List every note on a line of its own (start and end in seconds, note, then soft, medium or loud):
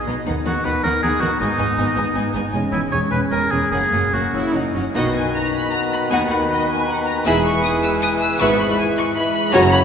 0.00 0.22 B3 soft
0.00 0.22 D#4 medium
0.06 0.15 B1 medium
0.06 0.14 B2 medium
0.06 0.14 B3 medium
0.06 0.15 D#4 soft
0.06 0.15 D#5 soft
0.26 0.35 D#2 medium
0.26 0.34 D#3 medium
0.26 0.33 B3 medium
0.26 2.35 B3 medium
0.26 0.34 D#4 medium
0.26 2.35 D#4 medium
0.26 0.34 F#5 medium
0.45 0.53 D#2 medium
0.45 0.53 D#3 medium
0.45 0.53 B3 soft
0.45 0.53 D#4 medium
0.45 0.66 F#4 medium
0.45 0.53 F#5 medium
0.64 0.73 D#2 medium
0.64 0.72 D#3 medium
0.64 0.72 B3 medium
0.64 0.72 D#4 medium
0.64 0.83 B4 medium
0.64 0.72 F#5 soft
0.83 0.92 D#2 medium
0.83 0.91 D#3 medium
0.83 0.91 B3 medium
0.83 0.91 D#4 medium
0.83 1.02 A#4 medium
0.83 0.92 F#5 medium
1.02 1.10 D#2 medium
1.02 1.10 D#3 medium
1.02 1.10 B3 soft
1.02 1.10 D#4 medium
1.02 1.21 G#4 medium
1.02 1.11 F#5 medium
1.20 1.29 D#2 medium
1.20 1.28 D#3 medium
1.20 1.29 B3 medium
1.20 1.29 D#4 medium
1.20 1.39 F#4 medium
1.20 1.29 F#5 medium
1.40 1.48 G#1 medium
1.40 1.48 G#2 medium
1.40 1.48 B3 medium
1.40 2.32 D#4 medium
1.40 1.48 D#4 medium
1.40 1.48 G#5 medium
1.58 1.67 G#1 medium
1.58 1.67 G#2 medium
1.58 1.67 B3 medium
1.58 1.66 D#4 medium
1.58 1.66 G#5 medium
1.77 1.86 G#1 medium
1.77 1.86 G#2 medium
1.77 1.86 B3 medium
1.77 1.85 D#4 medium
1.77 1.85 G#5 medium
1.96 2.04 G#1 medium
1.96 2.04 G#2 medium
1.96 2.04 B3 medium
1.96 2.04 D#4 medium
1.96 2.04 G#5 medium
2.14 2.23 G#1 medium
2.14 2.23 G#2 medium
2.14 2.23 B3 medium
2.14 2.23 D#4 medium
2.14 2.22 G#5 medium
2.34 2.42 G#1 medium
2.34 2.42 G#2 medium
2.34 2.42 B3 medium
2.34 2.41 D#4 medium
2.34 2.42 G#5 medium
2.52 2.61 E1 medium
2.52 2.61 E2 medium
2.52 2.89 G#3 medium
2.52 2.61 G#3 medium
2.52 2.60 C#4 medium
2.52 2.89 C#4 medium
2.52 2.60 G#5 medium
2.72 2.80 E1 medium
2.72 2.80 E2 medium
2.72 2.80 G#3 soft
2.72 2.79 C#4 soft
2.72 2.81 E4 medium
2.72 2.81 G#5 medium
2.90 3.00 E1 medium
2.90 2.99 E2 medium
2.90 3.70 G#3 medium
2.90 2.99 G#3 soft
2.90 2.98 C#4 medium
2.90 3.70 C#4 medium
2.90 3.01 C#5 medium
2.90 2.99 G#5 soft
3.11 3.19 E1 medium
3.11 3.19 E2 medium
3.11 3.19 G#3 soft
3.11 3.19 C#4 soft
3.11 3.20 B4 medium
3.11 3.19 G#5 soft
3.30 3.39 E1 medium
3.30 3.39 E2 medium
3.30 3.38 G#3 soft
3.30 3.39 C#4 medium
3.30 3.52 A#4 medium
3.30 3.39 G#5 medium
3.51 3.60 E1 medium
3.51 3.59 E2 medium
3.51 3.59 G#3 soft
3.51 3.59 C#4 soft
3.51 3.71 G#4 medium
3.51 3.59 G#5 medium
3.71 3.80 F#1 medium
3.71 3.79 F#2 medium
3.71 3.79 A#3 soft
3.71 4.14 A#3 soft
3.71 3.80 C#4 medium
3.71 4.13 C#4 medium
3.71 4.14 G#4 medium
3.71 3.80 F#5 soft
3.92 4.01 F#1 medium
3.92 4.00 F#2 medium
3.92 4.00 A#3 soft
3.92 4.01 C#4 soft
3.92 4.00 F#5 soft
4.13 4.22 F#1 medium
4.13 4.21 F#2 medium
4.13 4.21 A#3 medium
4.13 4.74 A#3 medium
4.13 4.21 C#4 soft
4.13 4.74 C#4 medium
4.13 4.54 F#4 medium
4.13 4.22 F#5 soft
4.34 4.42 F#1 soft
4.34 4.42 F#2 medium
4.34 4.42 C#4 soft
4.34 4.54 E4 medium
4.34 4.42 F#5 soft
4.54 4.63 F#1 medium
4.54 4.63 F#2 soft
4.54 4.63 C#4 medium
4.54 4.75 D#4 medium
4.54 4.63 F#5 soft
4.75 4.83 F#1 soft
4.75 4.83 F#2 medium
4.75 4.83 C#4 soft
4.75 4.83 C#4 medium
4.75 4.84 F#5 soft
4.94 5.27 B1 medium
4.94 5.27 B2 medium
4.94 7.22 D#3 medium
4.94 5.13 B3 soft
4.94 6.08 B3 medium
4.94 5.13 D#4 medium
4.94 6.08 D#4 medium
4.94 7.21 F#4 medium
4.94 5.13 F#4 medium
4.94 7.21 B4 medium
4.94 5.13 D#5 medium
4.94 5.03 F#5 medium
5.15 5.34 G#5 medium
5.33 5.70 D#5 medium
5.33 5.53 A#5 medium
5.53 5.72 B5 medium
5.71 6.12 F#5 medium
5.71 5.79 A#5 medium
5.92 6.00 B5 medium
6.11 6.43 D#2 medium
6.11 6.44 D#2 medium
6.11 6.29 B3 medium
6.11 6.49 B3 medium
6.11 6.29 D#4 medium
6.11 6.49 D#4 medium
6.11 6.30 F#4 medium
6.11 6.29 F#5 medium
6.11 6.19 G#5 medium
6.11 6.89 B5 medium
6.31 6.38 F#5 medium
6.50 6.87 B3 medium
6.50 6.86 D#4 medium
6.50 6.69 D#5 medium
6.69 6.88 G#5 medium
6.87 7.25 B3 medium
6.87 7.25 D#4 medium
6.87 7.07 F#5 medium
6.87 7.24 A#5 medium
7.06 7.14 A#5 medium
7.25 7.57 E1 medium
7.25 7.57 E2 medium
7.25 9.49 E3 medium
7.25 8.39 G#3 medium
7.25 7.43 B3 medium
7.25 7.43 E4 medium
7.25 8.39 E4 medium
7.25 9.49 G#4 medium
7.25 7.43 G#4 medium
7.25 9.49 B4 medium
7.25 7.43 E5 medium
7.25 8.41 G#5 medium
7.25 7.44 B5 medium
7.43 7.63 C#6 medium
7.63 7.71 D#6 medium
7.82 7.90 E6 medium
8.01 8.09 D#6 medium
8.20 8.39 E6 loud
8.39 8.71 G#1 medium
8.39 8.71 G#2 medium
8.39 8.76 G#3 medium
8.39 8.57 B3 medium
8.39 8.77 E4 medium
8.39 8.57 E4 medium
8.39 8.57 B4 medium
8.39 9.14 E5 medium
8.39 8.57 E5 medium
8.39 8.58 C#6 medium
8.58 8.77 B5 medium
8.77 9.14 G#3 medium
8.77 9.14 E4 medium
8.77 8.85 G#5 medium
8.97 9.04 C#6 medium
9.15 9.52 G#3 medium
9.15 9.52 E4 medium
9.15 9.54 E5 medium
9.15 9.52 B5 loud
9.52 9.84 F#1 medium
9.52 9.84 F#2 medium
9.52 9.61 C#3 medium
9.52 9.84 F#3 medium
9.52 9.70 C#4 medium
9.52 9.84 C#4 medium
9.52 9.70 F#4 medium
9.52 9.62 F#4 medium
9.52 9.71 F#4 medium
9.52 9.70 C#5 medium
9.52 9.61 C#5 medium
9.52 9.84 F#5 medium
9.52 9.71 A#5 loud
9.71 9.80 C#3 medium
9.71 9.81 F#4 medium
9.71 9.80 C#5 medium
9.71 9.79 B5 loud